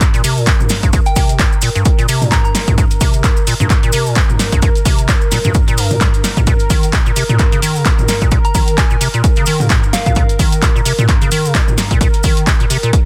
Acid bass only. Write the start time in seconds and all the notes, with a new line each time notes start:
0.14 A#2
0.24 C3
0.37 A#2
0.47 G2
0.83 G2
0.93 G2
1.16 C3
1.39 G2
1.62 A#2
1.75 G2
1.99 A#2
2.09 C3
2.22 A#2
2.32 G2
2.68 G2
2.78 G2
3.01 C3
3.24 G2
3.47 A#2
3.60 G2
3.83 A#2
3.93 C3
4.06 A#2
4.16 G2
4.52 G2
4.62 G2
4.85 C3
5.09 G2
5.32 A#2
5.45 G2
5.68 A#2
5.78 G2
5.91 C3
6.01 G3
6.37 C3
6.47 A#2
6.70 D#3
6.93 A#2
7.06 A#2
7.16 C3
7.29 A#2
7.52 C#3
7.62 D#3
7.75 C#3
7.85 A#2
8.22 A#2
8.32 A#2
8.55 D#3
8.78 A#2
8.91 A#2
9.01 C3
9.14 A#2
9.37 C#3
9.47 D#3
9.60 C#3
9.70 A#2
10.06 A#2
10.16 A#2
10.39 D#3
10.62 A#2
10.76 A#2
10.86 C3
10.99 A#2
11.22 C#3
11.32 D#3
11.45 C#3
11.55 A#2
11.91 A#2
12.01 A#2
12.24 D#3
12.47 A#2
12.60 A#2
12.70 C3
12.83 A#2